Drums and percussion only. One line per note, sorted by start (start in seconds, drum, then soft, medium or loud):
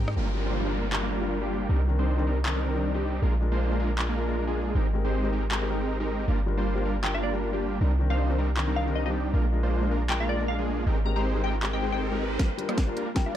0.08 cross-stick medium
0.93 clap medium
2.46 clap medium
3.99 clap medium
5.52 clap medium
7.04 clap medium
8.57 clap medium
10.10 clap medium
11.63 clap medium
12.39 kick medium
12.39 snare soft
12.39 closed hi-hat medium
12.59 closed hi-hat medium
12.69 cross-stick medium
12.69 closed hi-hat medium
12.78 kick medium
12.78 snare soft
12.78 closed hi-hat medium
12.97 closed hi-hat medium
13.16 kick medium
13.16 snare soft
13.16 closed hi-hat medium